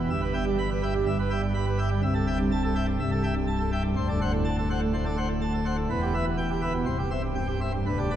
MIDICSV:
0, 0, Header, 1, 2, 480
1, 0, Start_track
1, 0, Tempo, 483092
1, 100, Time_signature, 4, 2, 24, 8
1, 6821, Tempo, 499584
1, 8066, End_track
2, 0, Start_track
2, 0, Title_t, "Pipe organ"
2, 0, Program_c, 0, 19
2, 101, Note_on_c, 0, 31, 77
2, 102, Note_on_c, 0, 43, 79
2, 103, Note_on_c, 0, 76, 76
2, 209, Note_off_c, 0, 76, 0
2, 215, Note_on_c, 0, 71, 64
2, 324, Note_off_c, 0, 71, 0
2, 331, Note_on_c, 0, 76, 59
2, 337, Note_on_c, 0, 79, 65
2, 437, Note_off_c, 0, 76, 0
2, 440, Note_off_c, 0, 79, 0
2, 460, Note_on_c, 0, 55, 73
2, 567, Note_off_c, 0, 55, 0
2, 583, Note_on_c, 0, 83, 96
2, 689, Note_off_c, 0, 83, 0
2, 704, Note_on_c, 0, 71, 67
2, 809, Note_off_c, 0, 71, 0
2, 824, Note_on_c, 0, 79, 67
2, 825, Note_on_c, 0, 76, 66
2, 924, Note_off_c, 0, 79, 0
2, 925, Note_off_c, 0, 76, 0
2, 944, Note_on_c, 0, 55, 61
2, 1037, Note_off_c, 0, 31, 0
2, 1040, Note_off_c, 0, 43, 0
2, 1049, Note_off_c, 0, 55, 0
2, 1056, Note_on_c, 0, 31, 77
2, 1059, Note_on_c, 0, 76, 79
2, 1060, Note_on_c, 0, 43, 71
2, 1166, Note_off_c, 0, 76, 0
2, 1184, Note_on_c, 0, 71, 62
2, 1288, Note_off_c, 0, 71, 0
2, 1299, Note_on_c, 0, 76, 63
2, 1300, Note_on_c, 0, 79, 73
2, 1399, Note_off_c, 0, 76, 0
2, 1400, Note_off_c, 0, 79, 0
2, 1414, Note_on_c, 0, 55, 66
2, 1522, Note_off_c, 0, 55, 0
2, 1535, Note_on_c, 0, 83, 77
2, 1642, Note_off_c, 0, 83, 0
2, 1653, Note_on_c, 0, 71, 63
2, 1761, Note_off_c, 0, 71, 0
2, 1774, Note_on_c, 0, 79, 72
2, 1775, Note_on_c, 0, 76, 62
2, 1877, Note_off_c, 0, 76, 0
2, 1877, Note_off_c, 0, 79, 0
2, 1893, Note_on_c, 0, 55, 58
2, 1985, Note_off_c, 0, 31, 0
2, 1987, Note_off_c, 0, 43, 0
2, 1996, Note_off_c, 0, 55, 0
2, 2012, Note_on_c, 0, 76, 77
2, 2013, Note_on_c, 0, 24, 80
2, 2013, Note_on_c, 0, 36, 84
2, 2121, Note_off_c, 0, 76, 0
2, 2135, Note_on_c, 0, 69, 67
2, 2243, Note_off_c, 0, 69, 0
2, 2257, Note_on_c, 0, 76, 60
2, 2257, Note_on_c, 0, 79, 69
2, 2359, Note_off_c, 0, 76, 0
2, 2360, Note_off_c, 0, 79, 0
2, 2377, Note_on_c, 0, 43, 67
2, 2484, Note_off_c, 0, 43, 0
2, 2498, Note_on_c, 0, 81, 109
2, 2605, Note_off_c, 0, 81, 0
2, 2621, Note_on_c, 0, 69, 68
2, 2727, Note_off_c, 0, 69, 0
2, 2737, Note_on_c, 0, 76, 64
2, 2739, Note_on_c, 0, 79, 70
2, 2839, Note_off_c, 0, 76, 0
2, 2840, Note_off_c, 0, 79, 0
2, 2853, Note_on_c, 0, 43, 62
2, 2959, Note_off_c, 0, 24, 0
2, 2959, Note_off_c, 0, 36, 0
2, 2962, Note_off_c, 0, 43, 0
2, 2978, Note_on_c, 0, 76, 73
2, 2979, Note_on_c, 0, 24, 72
2, 2979, Note_on_c, 0, 36, 75
2, 3084, Note_off_c, 0, 76, 0
2, 3094, Note_on_c, 0, 69, 64
2, 3201, Note_off_c, 0, 69, 0
2, 3213, Note_on_c, 0, 79, 77
2, 3214, Note_on_c, 0, 76, 68
2, 3315, Note_off_c, 0, 79, 0
2, 3316, Note_off_c, 0, 76, 0
2, 3329, Note_on_c, 0, 43, 63
2, 3438, Note_off_c, 0, 43, 0
2, 3447, Note_on_c, 0, 81, 74
2, 3557, Note_off_c, 0, 81, 0
2, 3571, Note_on_c, 0, 69, 62
2, 3679, Note_off_c, 0, 69, 0
2, 3696, Note_on_c, 0, 76, 63
2, 3699, Note_on_c, 0, 79, 70
2, 3798, Note_off_c, 0, 76, 0
2, 3799, Note_off_c, 0, 79, 0
2, 3818, Note_on_c, 0, 43, 57
2, 3908, Note_off_c, 0, 24, 0
2, 3908, Note_off_c, 0, 36, 0
2, 3919, Note_off_c, 0, 43, 0
2, 3939, Note_on_c, 0, 26, 77
2, 3939, Note_on_c, 0, 38, 79
2, 3939, Note_on_c, 0, 72, 76
2, 4046, Note_off_c, 0, 72, 0
2, 4062, Note_on_c, 0, 69, 65
2, 4063, Note_on_c, 0, 62, 60
2, 4168, Note_off_c, 0, 62, 0
2, 4168, Note_off_c, 0, 69, 0
2, 4185, Note_on_c, 0, 72, 57
2, 4188, Note_on_c, 0, 78, 67
2, 4285, Note_off_c, 0, 72, 0
2, 4286, Note_off_c, 0, 78, 0
2, 4307, Note_on_c, 0, 45, 67
2, 4411, Note_off_c, 0, 45, 0
2, 4418, Note_on_c, 0, 81, 101
2, 4527, Note_off_c, 0, 81, 0
2, 4554, Note_on_c, 0, 69, 62
2, 4655, Note_off_c, 0, 69, 0
2, 4671, Note_on_c, 0, 72, 57
2, 4672, Note_on_c, 0, 78, 71
2, 4769, Note_off_c, 0, 72, 0
2, 4769, Note_off_c, 0, 78, 0
2, 4787, Note_on_c, 0, 45, 62
2, 4887, Note_off_c, 0, 45, 0
2, 4906, Note_on_c, 0, 72, 71
2, 4907, Note_on_c, 0, 45, 65
2, 5011, Note_off_c, 0, 72, 0
2, 5012, Note_off_c, 0, 45, 0
2, 5025, Note_on_c, 0, 69, 56
2, 5028, Note_on_c, 0, 62, 57
2, 5130, Note_off_c, 0, 69, 0
2, 5132, Note_off_c, 0, 62, 0
2, 5143, Note_on_c, 0, 72, 61
2, 5144, Note_on_c, 0, 78, 67
2, 5244, Note_off_c, 0, 72, 0
2, 5244, Note_off_c, 0, 78, 0
2, 5260, Note_on_c, 0, 45, 55
2, 5367, Note_off_c, 0, 45, 0
2, 5379, Note_on_c, 0, 81, 67
2, 5486, Note_off_c, 0, 81, 0
2, 5505, Note_on_c, 0, 69, 60
2, 5610, Note_off_c, 0, 69, 0
2, 5616, Note_on_c, 0, 72, 57
2, 5619, Note_on_c, 0, 78, 62
2, 5720, Note_off_c, 0, 72, 0
2, 5721, Note_off_c, 0, 78, 0
2, 5740, Note_on_c, 0, 45, 54
2, 5821, Note_off_c, 0, 26, 0
2, 5822, Note_off_c, 0, 38, 0
2, 5842, Note_off_c, 0, 45, 0
2, 5861, Note_on_c, 0, 71, 72
2, 5863, Note_on_c, 0, 40, 76
2, 5864, Note_on_c, 0, 28, 71
2, 5968, Note_off_c, 0, 71, 0
2, 5983, Note_on_c, 0, 59, 56
2, 5984, Note_on_c, 0, 67, 58
2, 6089, Note_off_c, 0, 59, 0
2, 6090, Note_off_c, 0, 67, 0
2, 6104, Note_on_c, 0, 76, 65
2, 6107, Note_on_c, 0, 71, 57
2, 6205, Note_off_c, 0, 76, 0
2, 6207, Note_off_c, 0, 71, 0
2, 6221, Note_on_c, 0, 47, 64
2, 6328, Note_off_c, 0, 47, 0
2, 6335, Note_on_c, 0, 79, 93
2, 6445, Note_off_c, 0, 79, 0
2, 6459, Note_on_c, 0, 67, 56
2, 6568, Note_off_c, 0, 67, 0
2, 6577, Note_on_c, 0, 76, 64
2, 6579, Note_on_c, 0, 71, 53
2, 6681, Note_off_c, 0, 76, 0
2, 6682, Note_off_c, 0, 71, 0
2, 6696, Note_on_c, 0, 47, 52
2, 6796, Note_off_c, 0, 28, 0
2, 6796, Note_off_c, 0, 40, 0
2, 6801, Note_off_c, 0, 47, 0
2, 6815, Note_on_c, 0, 24, 73
2, 6815, Note_on_c, 0, 36, 72
2, 6815, Note_on_c, 0, 72, 62
2, 6923, Note_off_c, 0, 72, 0
2, 6938, Note_on_c, 0, 67, 58
2, 7044, Note_off_c, 0, 67, 0
2, 7055, Note_on_c, 0, 76, 57
2, 7057, Note_on_c, 0, 72, 52
2, 7158, Note_off_c, 0, 72, 0
2, 7158, Note_off_c, 0, 76, 0
2, 7174, Note_on_c, 0, 43, 49
2, 7282, Note_off_c, 0, 43, 0
2, 7289, Note_on_c, 0, 79, 79
2, 7399, Note_off_c, 0, 79, 0
2, 7409, Note_on_c, 0, 67, 55
2, 7520, Note_off_c, 0, 67, 0
2, 7536, Note_on_c, 0, 76, 57
2, 7538, Note_on_c, 0, 72, 51
2, 7639, Note_off_c, 0, 76, 0
2, 7641, Note_off_c, 0, 72, 0
2, 7660, Note_on_c, 0, 43, 47
2, 7747, Note_off_c, 0, 24, 0
2, 7747, Note_off_c, 0, 36, 0
2, 7762, Note_off_c, 0, 43, 0
2, 7777, Note_on_c, 0, 38, 64
2, 7778, Note_on_c, 0, 26, 64
2, 7779, Note_on_c, 0, 71, 60
2, 7888, Note_off_c, 0, 71, 0
2, 7899, Note_on_c, 0, 62, 49
2, 7900, Note_on_c, 0, 67, 47
2, 8008, Note_off_c, 0, 62, 0
2, 8009, Note_off_c, 0, 67, 0
2, 8013, Note_on_c, 0, 74, 53
2, 8015, Note_on_c, 0, 71, 47
2, 8066, Note_off_c, 0, 26, 0
2, 8066, Note_off_c, 0, 38, 0
2, 8066, Note_off_c, 0, 71, 0
2, 8066, Note_off_c, 0, 74, 0
2, 8066, End_track
0, 0, End_of_file